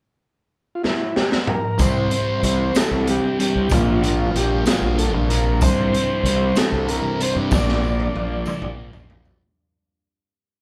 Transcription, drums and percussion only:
0.84 snare medium
1.16 snare medium
1.32 snare loud
1.47 mid tom medium
1.79 kick loud
1.79 closed hi-hat medium
1.79 tambourine medium
2.11 closed hi-hat medium
2.43 closed hi-hat medium
2.75 snare loud
2.75 closed hi-hat loud
2.75 tambourine medium
3.07 closed hi-hat medium
3.40 closed hi-hat medium
3.69 kick loud
3.69 closed hi-hat loud
3.69 tambourine medium
4.04 closed hi-hat medium
4.36 closed hi-hat medium
4.66 snare loud
4.66 closed hi-hat medium
4.66 tambourine medium
4.99 closed hi-hat medium
5.30 closed hi-hat medium
5.61 kick loud
5.61 closed hi-hat loud
5.61 tambourine medium
5.94 closed hi-hat medium
6.26 closed hi-hat medium
6.55 snare loud
6.55 closed hi-hat medium
6.55 tambourine medium
6.89 closed hi-hat medium
7.21 closed hi-hat medium
7.51 kick loud
7.51 snare medium
7.51 tambourine medium
7.69 snare medium
7.84 tambourine soft
8.00 high tom medium
8.16 high tom medium
8.46 mid tom medium
8.46 tambourine medium
8.62 mid tom medium
8.93 floor tom medium
8.93 tambourine soft
9.10 floor tom medium
9.25 floor tom medium
9.25 tambourine soft

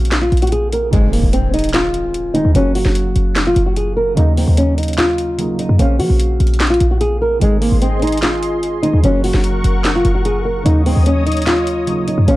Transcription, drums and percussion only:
0.05 closed hi-hat medium
0.12 snare loud
0.12 clap medium
0.12 closed hi-hat medium
0.32 closed hi-hat soft
0.37 closed hi-hat medium
0.42 closed hi-hat medium
0.47 closed hi-hat medium
0.52 closed hi-hat medium
0.72 closed hi-hat medium
0.93 closed hi-hat medium
1.13 open hi-hat medium
1.33 closed hi-hat medium
1.54 closed hi-hat medium
1.59 closed hi-hat medium
1.64 closed hi-hat medium
1.69 closed hi-hat medium
1.74 snare loud
1.74 clap medium
1.74 closed hi-hat medium
1.94 closed hi-hat medium
2.14 closed hi-hat medium
2.35 closed hi-hat medium
2.55 closed hi-hat medium
2.75 open hi-hat medium
2.85 snare medium
2.95 closed hi-hat loud
3.16 closed hi-hat medium
3.36 snare loud
3.36 clap loud
3.36 closed hi-hat medium
3.56 closed hi-hat medium
3.76 closed hi-hat medium
4.17 closed hi-hat medium
4.37 open hi-hat medium
4.57 closed hi-hat loud
4.78 closed hi-hat medium
4.83 closed hi-hat medium
4.88 closed hi-hat medium
4.93 closed hi-hat medium
4.98 snare loud
4.98 clap medium
4.98 closed hi-hat medium
5.18 closed hi-hat medium
5.39 closed hi-hat medium
5.59 closed hi-hat medium
5.79 closed hi-hat medium
6.00 open hi-hat medium
6.20 closed hi-hat loud
6.40 closed hi-hat medium
6.47 closed hi-hat medium
6.54 closed hi-hat medium
6.60 snare loud
6.60 clap loud
6.60 closed hi-hat medium
6.67 closed hi-hat medium
6.74 closed hi-hat medium
6.80 closed hi-hat medium
7.01 closed hi-hat medium
7.41 closed hi-hat medium
7.62 open hi-hat medium
7.82 closed hi-hat medium
8.02 closed hi-hat medium
8.07 closed hi-hat medium
8.12 closed hi-hat medium
8.17 closed hi-hat medium
8.23 snare loud
8.23 clap medium
8.23 closed hi-hat medium
8.43 closed hi-hat medium
8.63 closed hi-hat medium
8.83 closed hi-hat medium
9.04 closed hi-hat medium
9.24 open hi-hat medium
9.34 snare medium
9.44 closed hi-hat medium
9.64 closed hi-hat medium
9.85 snare loud
9.85 clap loud
9.85 closed hi-hat medium
10.05 closed hi-hat medium
10.25 closed hi-hat medium
10.66 closed hi-hat medium
10.86 open hi-hat medium
11.06 closed hi-hat loud
11.27 closed hi-hat medium
11.32 closed hi-hat medium
11.37 closed hi-hat medium
11.42 closed hi-hat medium
11.47 snare loud
11.47 clap medium
11.67 closed hi-hat medium
11.87 closed hi-hat medium
12.08 closed hi-hat medium
12.28 closed hi-hat medium

